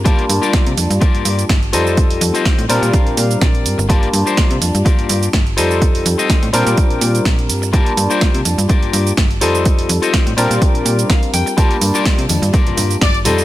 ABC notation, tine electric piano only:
X:1
M:4/4
L:1/8
Q:"Swing 16ths" 1/4=125
K:Gm
V:1 name="Tine electric piano"
[G,B,DFa]6- [G,B,DFa] [G,CEFA]- | [G,CEFA]3 [G,CDFB]4- [G,CDFB] | [G,B,DFa]6- [G,B,DFa] [G,CEFA]- | [G,CEFA]3 [G,CDFB]4- [G,CDFB] |
[G,B,DFa]6- [G,B,DFa] [G,CEFA]- | [G,CEFA]3 [G,CDFB]4- [G,CDFB] | [G,B,DFa]6- [G,B,DFa] [G,CEFA] |]